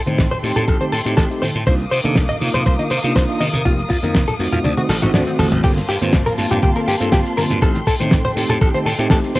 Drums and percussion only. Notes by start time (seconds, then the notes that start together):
0.06 closed hi-hat, muted conga, high conga
0.18 kick, snare, closed hi-hat
0.31 closed hi-hat, low conga
0.44 open hi-hat
0.56 closed hi-hat, low conga
0.68 kick, closed hi-hat
0.81 closed hi-hat, high conga
0.92 open hi-hat
1.06 closed hi-hat
1.17 kick, snare, closed hi-hat
1.31 closed hi-hat
1.43 open hi-hat, high conga
1.55 closed hi-hat
1.67 kick, closed hi-hat
1.80 closed hi-hat
1.93 open hi-hat
2.05 closed hi-hat, high conga
2.16 kick, snare, closed hi-hat
2.30 closed hi-hat, low conga
2.42 open hi-hat
2.54 closed hi-hat, low conga
2.66 kick, closed hi-hat
2.79 closed hi-hat, high conga
2.90 open hi-hat
3.04 closed hi-hat
3.16 kick, snare, closed hi-hat
3.29 closed hi-hat
3.41 open hi-hat, high conga
3.54 closed hi-hat, low conga
3.65 kick, closed hi-hat
3.79 closed hi-hat, muted conga
3.90 kick, open hi-hat
4.03 closed hi-hat, muted conga, high conga
4.15 kick, snare, closed hi-hat
4.28 closed hi-hat, low conga
4.40 open hi-hat
4.52 closed hi-hat, low conga
4.64 closed hi-hat, high tom
4.77 closed hi-hat, high tom, high conga
4.89 snare, open hi-hat
5.02 closed hi-hat, mid tom
5.14 snare, closed hi-hat, mid tom
5.27 closed hi-hat
5.39 mid tom, open hi-hat, high conga
5.52 closed hi-hat, mid tom
5.63 kick, closed hi-hat, crash, shaker
5.77 closed hi-hat, muted conga, shaker
5.88 open hi-hat, shaker
6.01 closed hi-hat, high conga, shaker
6.13 kick, snare, closed hi-hat, shaker
6.26 closed hi-hat, low conga, shaker
6.38 open hi-hat, shaker
6.51 closed hi-hat, low conga, shaker
6.62 kick, closed hi-hat, shaker
6.76 closed hi-hat, high conga, shaker
6.88 open hi-hat, shaker
7.01 closed hi-hat, shaker
7.12 kick, snare, closed hi-hat, shaker
7.25 closed hi-hat, shaker
7.37 open hi-hat, high conga, shaker
7.50 closed hi-hat, muted conga, low conga, shaker
7.62 kick, closed hi-hat, shaker
7.75 closed hi-hat, muted conga, shaker
7.87 kick, open hi-hat, shaker
8.00 closed hi-hat, high conga, shaker
8.11 kick, snare, closed hi-hat, shaker
8.24 closed hi-hat, low conga, shaker
8.37 open hi-hat, shaker
8.50 closed hi-hat, low conga, shaker
8.61 kick, closed hi-hat, shaker
8.74 closed hi-hat, high conga, shaker
8.87 open hi-hat, muted conga, shaker
9.00 closed hi-hat, shaker
9.10 kick, snare, closed hi-hat, shaker
9.24 closed hi-hat, shaker
9.35 open hi-hat, muted conga, high conga